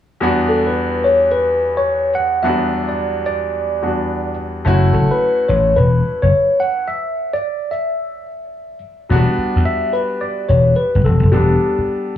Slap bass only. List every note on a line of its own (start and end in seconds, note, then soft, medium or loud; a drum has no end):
4.66 4.89 F#1 medium
4.93 5.09 F#1 medium
5.49 5.72 A1 medium
5.77 6.00 E1 medium
6.23 6.31 F#1 medium
9.10 9.25 E1 loud
9.38 muted slap bass stroke soft
9.56 9.64 E2 medium
10.49 10.73 E1 medium
10.95 11.03 G1 medium
11.05 11.20 E1 medium
11.23 11.31 F#1 medium
11.33 11.56 E1 loud
11.78 muted slap bass stroke soft